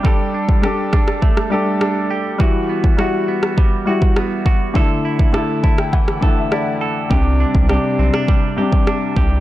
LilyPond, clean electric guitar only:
\new Staff \with { instrumentName = "Clean electric guitar" } { \time 4/4 \key e \minor \tempo 4 = 102 <g g'>8 d'8 g'8 d'8 a8 g'8 d'8 g'8 | <e fis'>8 b8 fis'8 b8 g8 fis'8 b8 fis'8 | <d a'>8 e'8 a'8 e'8 e8 a'8 e'8 a'8 | <c g'>8 d'8 g'8 c'16 d'16 g8 g'8 d'8 g'8 | }